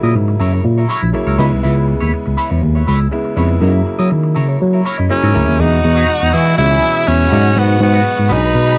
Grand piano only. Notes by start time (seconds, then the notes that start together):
Already playing: C#3 F#3 A#3 E4
1.13 C#3 F#3 A#3 E4 C#5
1.38 C#3 G#3 B3 D#4 E5
1.45 E4
3.11 C#3 G#3 B3 E4
3.36 C#3 G#3 B3 E4
3.60 C#3 F#3 A#3 D#4
3.68 E4
4.85 C#5
4.98 D#5
5.09 C#3 F#3 A#3 E4 E5
5.33 C#3 F#3 A#3 E4
5.59 B2 E3 G#3 D4
5.65 D#4
6.57 B2 E3 G#3 C#4
6.81 B2 E3 G#3 C#4
7.06 B2 E3 G#3 C#4
7.31 B2 F#3 G#3 D#4
8.29 B2 F#3 G#3 D4
8.37 D#4